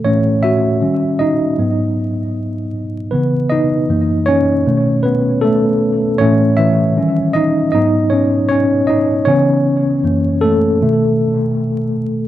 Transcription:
X:1
M:4/4
L:1/16
Q:"Swing 16ths" 1/4=78
K:C#m
V:1 name="Tine electric piano"
[Cc]2 [Fe]4 [Dd]8 z2 | B2 [Dd]4 [Cc]4 [B,B]2 [A,A]3 z | [Cc]2 [E,e]4 [Dd]2 [Dd]2 [Cc]2 [Cc]2 [Dd]2 | [Cc]6 [A,A]8 z2 |]
V:2 name="Tine electric piano" clef=bass
[A,,E,A,]4 [D,=G,C]2 z2 [^G,,F,B,]2 z6 | [C,E,B,]2 z2 [F,,E,^A,]4 [B,,D,=A,]2 z6 | [A,,E,A,]2 z2 [D,=G,C]4 [^G,,F,B,]2 z6 | [C,E,B,]2 z2 [F,,E,^A,]4 [B,,D,=A,]2 z6 |]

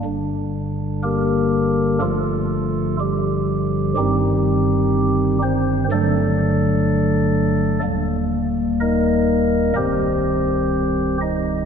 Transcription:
X:1
M:4/4
L:1/8
Q:1/4=62
K:Gm
V:1 name="Pipe organ"
z2 [B,GB]2 [A,FA]2 [G,G]2 | [G,EG]3 [Cc] [DAd]4 | z2 [EBe]2 [CGc]3 [Ee] |]
V:2 name="Pipe organ" clef=bass
[G,,,G,,D,G,D]4 [G,,,G,,D,F,]4 | [G,,,G,,E,C]4 [G,,,G,,D,^F,A,]4 | [E,,,E,,G,B,]4 [C,,,C,,E,G,]4 |]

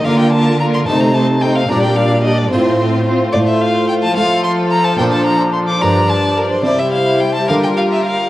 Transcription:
X:1
M:6/8
L:1/16
Q:3/8=73
K:Fmix
V:1 name="Violin"
f g a2 b c' a b a2 g f | b g f2 e d c4 z2 | [K:F] d e f2 g a f2 c'2 b a | g a b2 c' d' b2 a2 B c |
d e f2 g a f g f e f2 |]
V:2 name="Violin section"
B2 B2 B2 c2 c2 c2 | d2 d2 d2 c2 c2 c2 | [K:F] c6 A6- | A6 d6 |
c6 B6 |]
V:3 name="Violin section"
F2 F2 F2 E2 E2 E2 | D2 D2 D2 F2 F2 F2 | [K:F] F12 | D6 D6 |
E6 F6 |]
V:4 name="Harpsichord"
[D,B,F]6 [C,A,CE]6 | [B,,DG]6 [A,,Fc]6 | [K:F] A,,6 [A,Fc]6 | [B,,DB]6 [G,,DB]6 |
[C,CG]6 [D,B,B]6 |]
V:5 name="Viola section"
B,2 B,2 B,2 A,2 A,2 A,2 | G,2 G,2 G,2 C2 C2 C2 | [K:F] A,6 F,6- | F,12 |
G,12 |]
V:6 name="Cello section" clef=bass
D,6 C,6 | B,,6 A,,6 | [K:F] A,,6 A,6 | B,,6 G,,6 |
C,6 D,6 |]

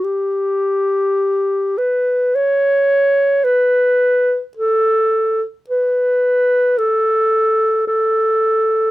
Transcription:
X:1
M:4/4
L:1/16
Q:1/4=54
K:Ador
V:1 name="Clarinet"
G6 B2 ^c4 B4 | A3 z B4 A4 A4 |]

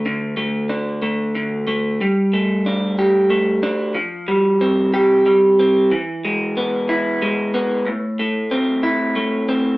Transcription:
X:1
M:6/8
L:1/8
Q:3/8=61
K:Gmix
V:1 name="Clean electric guitar"
[D,A,D] A, D A, D, A, | G, A, D G A, D | F, G, C G G, C | E, ^G, B, E G, B, |
A,, A, C E A, C |]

